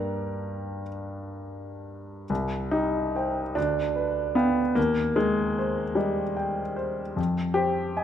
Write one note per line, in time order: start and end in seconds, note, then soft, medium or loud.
0.00 2.23 G2 soft
0.00 2.24 A#3 soft
0.00 2.24 D4 soft
0.00 2.24 G4 soft
0.00 0.83 A#4 soft
0.00 0.82 G5 soft
0.00 0.86 A#5 medium
2.30 3.53 C2 soft
2.71 3.56 D#4 medium
2.71 3.40 G4 soft
3.16 3.52 C5 soft
3.16 3.53 G5 soft
3.55 4.73 D2 soft
3.55 4.36 D4 medium
3.96 4.61 B4 soft
4.35 4.77 B3 medium
4.35 4.73 F5 soft
4.35 4.73 G5 soft
4.75 7.14 D#2 soft
4.75 5.17 A#3 medium
5.16 5.82 D#3 soft
5.16 5.97 G#3 medium
5.59 6.22 C5 soft
5.95 7.16 G3 medium
5.95 6.61 D#5 soft
6.37 7.01 G5 soft
6.76 7.17 C5 soft
7.16 8.04 F2 medium
7.54 8.04 G4 medium
7.54 8.04 C5 soft
7.97 8.04 D#5 soft
7.97 8.04 G#5 soft